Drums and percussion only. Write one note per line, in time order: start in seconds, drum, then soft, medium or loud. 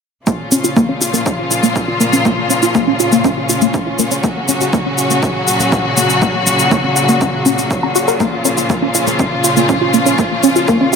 0.27 kick loud
0.27 shaker soft
0.52 shaker medium
0.64 shaker soft
0.77 kick loud
0.77 shaker soft
1.01 shaker medium
1.14 shaker soft
1.26 kick loud
1.26 shaker soft
1.51 shaker medium
1.64 shaker soft
1.76 kick loud
1.76 shaker soft
2.01 shaker medium
2.13 shaker soft
2.25 kick loud
2.25 shaker soft
2.50 shaker medium
2.63 shaker soft
2.75 kick loud
2.75 shaker soft
3.00 shaker medium
3.12 shaker soft
3.24 kick loud
3.24 shaker soft
3.49 shaker medium
3.62 shaker soft
3.74 kick loud
3.74 shaker soft
3.99 shaker medium
4.11 shaker soft
4.24 kick loud
4.24 shaker soft
4.48 shaker medium
4.61 shaker soft
4.73 kick loud
4.73 shaker soft
4.98 shaker medium
5.10 shaker soft
5.23 kick loud
5.23 shaker soft
5.48 shaker medium
5.60 shaker soft
5.72 kick loud
5.72 shaker soft
5.97 shaker medium
6.10 shaker soft
6.22 kick loud
6.22 shaker soft
6.47 shaker medium
6.59 shaker soft
6.71 kick loud
6.71 shaker soft
6.96 shaker medium
7.09 shaker soft
7.21 kick loud
7.21 shaker soft
7.46 shaker medium
7.58 shaker soft
7.71 kick loud
7.71 shaker soft
7.96 shaker medium
8.08 shaker soft
8.20 kick loud
8.20 shaker soft
8.45 shaker medium
8.58 shaker soft
8.70 kick loud
8.70 shaker soft
8.95 shaker medium
9.07 shaker soft
9.19 kick loud
9.19 shaker soft
9.44 shaker medium
9.57 shaker soft
9.69 kick loud
9.69 shaker soft
9.94 shaker medium
10.06 shaker soft
10.19 kick loud
10.19 shaker soft
10.43 shaker medium
10.56 shaker soft
10.68 kick loud
10.68 shaker soft